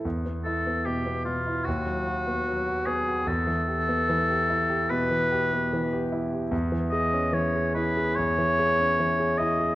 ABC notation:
X:1
M:4/4
L:1/16
Q:1/4=74
K:Ephr
V:1 name="Oboe"
z2 A2 G2 F2 ^F6 ^G2 | A8 B6 z2 | [K:C#m] z2 d2 c2 B2 c6 d2 |]
V:2 name="Grand piano"
E,, B, E B, B,, B, B,, E ^D,, ^F, ^F B, F, F B, F | E,, E, G B, E, G E G B,, E, G B, E, G E G | [K:C#m] E,, E, G C E, G E G E,, E, G C E, G E G |]